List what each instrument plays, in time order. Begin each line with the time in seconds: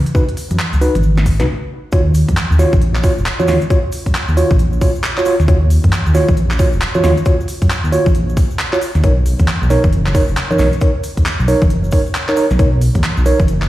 0.06 closed hi-hat, cabasa
0.15 tine electric piano D#4 F#4 B4, kick, cabasa
0.29 closed hi-hat
0.37 open hi-hat, cabasa
0.51 detuned saw bass F#2, closed hi-hat, high conga, cabasa
0.59 clap, cabasa
0.73 detuned saw bass C#2, closed hi-hat, cabasa
0.81 tine electric piano D#4 F#4 B4, open hi-hat, cabasa
0.95 detuned saw bass G#1, closed hi-hat, high conga, cabasa
1.03 detuned saw bass G#1, cabasa
1.17 snare, closed hi-hat, cabasa
1.26 kick, open hi-hat, cabasa
1.40 detuned saw bass C#2, tine electric piano D#4 F#4 B4, snare, closed hi-hat, cabasa
1.92 detuned saw bass D#2, tine electric piano F4 F#4 C#5, kick, closed hi-hat, cabasa
2.14 open hi-hat, cabasa
2.28 detuned saw bass F#2, kick, closed hi-hat, high conga, cabasa
2.37 clap, closed hi-hat, cabasa
2.51 detuned saw bass D#2, cabasa
2.59 tine electric piano F4 F#4 C#5, snare, open hi-hat, cabasa
2.73 detuned saw bass A#1, kick, closed hi-hat, high conga, cabasa
2.81 closed hi-hat, cabasa
2.95 clap, cabasa
3.03 tine electric piano F4 F#4 C#5, kick, open hi-hat, cabasa
3.17 detuned saw bass D#1, cabasa
3.26 clap, closed hi-hat, cabasa
3.39 tine electric piano F4 F#4 C#5, high conga, cabasa
3.48 detuned saw bass D#2, tine electric piano F4 F#4 C#5, snare, open hi-hat, cabasa
3.61 closed hi-hat, cabasa
3.70 tine electric piano F4 F#4 C#5, kick, closed hi-hat, cabasa
3.92 open hi-hat, cabasa
4.06 detuned saw bass F#2, kick, closed hi-hat, cabasa
4.15 clap, closed hi-hat, cabasa
4.28 detuned saw bass D#2, cabasa
4.37 tine electric piano F4 F#4 C#5, open hi-hat, cabasa
4.51 detuned saw bass A#1, kick, closed hi-hat, high conga, cabasa
4.59 closed hi-hat, cabasa
4.73 cabasa
4.81 tine electric piano F4 F#4 C#5, kick, open hi-hat, cabasa
4.95 cabasa
5.04 clap, closed hi-hat, cabasa
5.17 tine electric piano F4 F#4 C#5, clap, cabasa
5.25 tine electric piano F4 F#4 C#5, open hi-hat, cabasa
5.40 detuned saw bass D#2, snare, closed hi-hat, cabasa
5.48 detuned saw bass D#2, tine electric piano F4 F#4 C#5, kick, closed hi-hat, cabasa
5.70 open hi-hat, cabasa
5.83 detuned saw bass F#2, kick, closed hi-hat, high conga, cabasa
5.93 clap, closed hi-hat, cabasa
6.06 detuned saw bass D#2, cabasa
6.15 tine electric piano F4 F#4 C#5, snare, open hi-hat, cabasa
6.28 detuned saw bass A#1, kick, high conga, cabasa
6.37 closed hi-hat, cabasa
6.51 clap, cabasa
6.59 tine electric piano F4 F#4 C#5, kick, open hi-hat, cabasa
6.73 detuned saw bass D#1, cabasa
6.81 clap, closed hi-hat, cabasa
6.94 tine electric piano F4 F#4 C#5, high conga, cabasa
7.04 detuned saw bass D#2, tine electric piano F4 F#4 C#5, snare, open hi-hat, cabasa
7.17 closed hi-hat, cabasa
7.25 tine electric piano F4 F#4 C#5, kick, closed hi-hat, cabasa
7.40 cabasa
7.48 open hi-hat, cabasa
7.62 detuned saw bass F#2, kick, closed hi-hat, cabasa
7.70 clap, closed hi-hat, cabasa
7.84 detuned saw bass D#2, cabasa
7.92 tine electric piano F4 F#4 C#5, open hi-hat, cabasa
8.06 detuned saw bass A#1, kick, closed hi-hat, high conga, cabasa
8.15 closed hi-hat, cabasa
8.29 cabasa
8.37 kick, open hi-hat, cabasa
8.51 cabasa
8.59 clap, closed hi-hat, cabasa
8.73 tine electric piano F4 F#4 C#5, clap, cabasa
8.81 open hi-hat, cabasa
8.95 detuned saw bass D#2, snare, closed hi-hat, cabasa
9.04 detuned saw bass B1, tine electric piano D#4 A#4 C#5, kick, closed hi-hat, cabasa
9.26 open hi-hat, cabasa
9.39 detuned saw bass D#2, kick, closed hi-hat, high conga, cabasa
9.48 clap, closed hi-hat, cabasa
9.62 detuned saw bass B1, cabasa
9.70 tine electric piano D#4 A#4 C#5, snare, open hi-hat, cabasa
9.84 detuned saw bass F#1, kick, closed hi-hat, high conga, cabasa
9.93 closed hi-hat, cabasa
10.06 clap, cabasa
10.15 tine electric piano D#4 A#4 C#5, kick, open hi-hat, cabasa
10.28 detuned saw bass F#1, cabasa
10.36 clap, closed hi-hat, cabasa
10.51 tine electric piano D#4 A#4 C#5, high conga, cabasa
10.58 detuned saw bass B1, tine electric piano D#4 A#4 C#5, snare, open hi-hat, cabasa
10.72 closed hi-hat, cabasa
10.81 tine electric piano D#4 A#4 C#5, kick, closed hi-hat, cabasa
11.03 open hi-hat, cabasa
11.17 detuned saw bass D#2, kick, closed hi-hat, cabasa
11.26 clap, closed hi-hat, cabasa
11.40 detuned saw bass B1, cabasa
11.48 tine electric piano D#4 A#4 C#5, open hi-hat, cabasa
11.62 detuned saw bass F#1, kick, closed hi-hat, high conga, cabasa
11.70 closed hi-hat, cabasa
11.84 cabasa
11.91 tine electric piano D#4 A#4 C#5, kick, open hi-hat, cabasa
12.06 cabasa
12.15 clap, closed hi-hat, cabasa
12.28 tine electric piano D#4 A#4 C#5, clap, cabasa
12.37 tine electric piano D#4 A#4 C#5, open hi-hat, cabasa
12.50 detuned saw bass B1, snare, closed hi-hat, cabasa
12.59 detuned saw bass B1, tine electric piano D#4 A#4 C#5, kick, closed hi-hat, cabasa
12.81 open hi-hat, cabasa
12.95 detuned saw bass D#2, kick, closed hi-hat, high conga, cabasa
13.03 clap, closed hi-hat, cabasa
13.17 detuned saw bass B1, cabasa
13.26 tine electric piano D#4 A#4 C#5, open hi-hat, cabasa
13.40 detuned saw bass F#1, kick, closed hi-hat, high conga, cabasa
13.48 closed hi-hat, cabasa
13.62 clap, cabasa